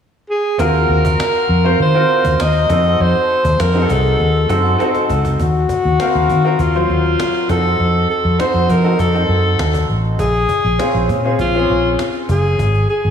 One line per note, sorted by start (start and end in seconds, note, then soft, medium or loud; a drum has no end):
0.30 0.61 G#4 medium
0.58 0.84 D#2 medium
0.58 1.48 C4 medium
0.58 1.48 F4 medium
0.58 1.48 F#4 medium
0.58 1.48 A#4 medium
0.58 1.79 A#4 medium
0.58 cajon bass medium
0.75 cajon slap soft
0.89 1.14 D#2 medium
0.89 cajon slap soft
1.05 cajon bass medium
1.20 cajon slap loud
1.49 1.74 F2 medium
1.64 1.90 C4 medium
1.64 1.90 F4 medium
1.64 1.90 F#4 medium
1.64 1.90 C5 medium
1.80 2.04 D#3 medium
1.80 2.43 C5 loud
1.80 cajon slap medium
1.94 2.68 C4 medium
1.94 2.69 F4 medium
1.94 2.68 F#4 medium
1.94 2.70 A#4 medium
2.09 cajon slap soft
2.24 2.37 D#2 medium
2.24 cajon bass medium
2.39 2.64 D#2 medium
2.39 3.03 D#5 loud
2.39 cajon slap loud
2.69 2.95 F2 medium
2.69 3.58 C4 medium
2.69 3.58 D#4 medium
2.69 3.58 F#4 medium
2.69 3.59 A4 medium
2.69 cajon bass loud
2.99 3.12 F2 loud
2.99 3.62 C5 loud
2.99 cajon slap soft
3.15 cajon slap soft
3.29 cajon slap soft
3.45 3.57 D#2 medium
3.45 cajon bass medium
3.60 3.85 F2 medium
3.60 3.92 A#4 medium
3.60 cajon slap loud
3.74 4.38 C4 medium
3.74 4.38 D#4 medium
3.74 4.38 F#4 medium
3.74 3.81 G#4 medium
3.82 4.41 A4 medium
3.89 4.14 C2 medium
3.89 4.80 A4 medium
3.89 cajon bass medium
4.19 4.45 D#2 medium
4.19 cajon slap medium
4.49 4.74 F#2 medium
4.49 4.75 C4 medium
4.49 4.75 D#4 medium
4.49 4.75 F#4 medium
4.49 4.75 A4 medium
4.49 cajon bass medium
4.78 5.30 C4 medium
4.78 5.30 D#4 medium
4.78 5.30 F#4 medium
4.78 5.30 A4 medium
4.78 cajon slap soft
4.78 cajon slap medium
4.95 cajon slap medium
5.09 5.35 C#2 medium
5.09 cajon bass medium
5.25 cajon bass medium
5.39 5.64 D#2 loud
5.39 6.62 F#4 medium
5.39 cajon bass medium
5.55 cajon slap soft
5.69 cajon bass medium
5.84 5.97 D#2 medium
5.84 cajon slap soft
6.00 6.38 C4 medium
6.00 6.38 F#4 medium
6.00 6.38 A#4 medium
6.00 6.38 F5 medium
6.00 cajon slap loud
6.15 6.27 D#2 medium
6.15 cajon slap soft
6.29 6.55 D#3 medium
6.29 cajon bass medium
6.44 6.70 C4 medium
6.44 6.70 F4 medium
6.44 6.70 F#4 medium
6.44 6.70 A#4 medium
6.44 cajon slap soft
6.59 6.84 D#2 medium
6.59 7.49 F4 medium
6.59 cajon bass medium
6.59 cajon slap medium
6.74 7.50 F#3 medium
6.74 7.48 C4 medium
6.74 7.50 F4 medium
6.74 7.50 C5 medium
6.74 cajon slap soft
6.89 7.14 D#2 medium
6.89 cajon slap soft
7.05 cajon slap soft
7.20 cajon slap loud
7.34 cajon slap soft
7.49 7.74 F2 medium
7.49 8.26 C4 medium
7.49 8.26 D#4 medium
7.49 8.26 F#4 medium
7.49 8.06 A4 medium
7.49 8.26 A4 medium
7.49 cajon bass medium
7.64 cajon slap soft
7.79 8.05 F2 medium
7.79 cajon slap soft
7.94 cajon slap soft
8.09 8.41 A4 medium
8.09 cajon slap soft
8.24 8.37 F2 medium
8.24 cajon slap soft
8.39 8.77 C4 medium
8.39 8.78 D#4 medium
8.39 8.78 F#4 medium
8.39 8.72 C5 medium
8.39 8.78 C5 medium
8.39 cajon slap medium
8.54 8.67 F2 medium
8.54 cajon slap soft
8.69 8.95 F3 medium
8.69 9.01 A#4 medium
8.69 cajon bass medium
8.83 9.09 C4 medium
8.83 9.10 D#4 medium
8.83 9.10 F#4 medium
8.83 9.10 A4 medium
8.83 cajon slap soft
8.99 9.24 F2 medium
8.99 9.90 A4 medium
8.99 cajon bass medium
8.99 cajon slap soft
9.14 10.16 C4 medium
9.14 10.16 D#4 medium
9.14 10.16 F#4 medium
9.14 10.17 A4 medium
9.14 cajon slap soft
9.28 9.54 F#2 medium
9.28 cajon slap soft
9.45 cajon slap soft
9.59 9.84 D#2 medium
9.59 cajon slap loud
9.74 cajon bass medium
9.89 10.15 A1 medium
9.89 cajon slap soft
10.04 cajon slap soft
10.19 10.44 A#1 medium
10.19 11.05 G#4 loud
10.19 cajon bass medium
10.34 cajon slap soft
10.49 cajon bass medium
10.64 10.77 A#1 medium
10.64 cajon slap soft
10.79 11.17 C4 medium
10.79 11.17 C#4 medium
10.79 11.18 F4 medium
10.79 11.18 G#4 medium
10.79 cajon slap loud
10.94 11.07 A#1 loud
10.94 cajon slap soft
11.09 11.35 A#2 medium
11.09 cajon bass medium
11.24 11.50 C4 medium
11.24 11.50 C#4 medium
11.24 11.50 F4 medium
11.24 11.50 G#4 medium
11.24 cajon slap soft
11.39 11.64 A#1 medium
11.39 11.96 F4 loud
11.39 cajon bass medium
11.39 cajon slap soft
11.54 12.56 C4 medium
11.54 12.56 C#4 medium
11.54 12.57 F4 medium
11.54 12.57 G#4 medium
11.54 cajon slap soft
11.69 11.95 A#1 medium
11.69 cajon slap soft
11.84 cajon slap soft
11.99 cajon slap loud
12.14 cajon slap soft
12.29 12.54 F#1 medium
12.29 12.86 G#4 medium
12.29 cajon bass medium
12.44 cajon slap soft
12.59 12.84 G#1 medium
12.59 cajon bass medium
12.74 cajon slap soft
12.89 13.10 G#4 medium
12.89 cajon slap soft
13.04 13.10 G#1 medium
13.04 cajon slap soft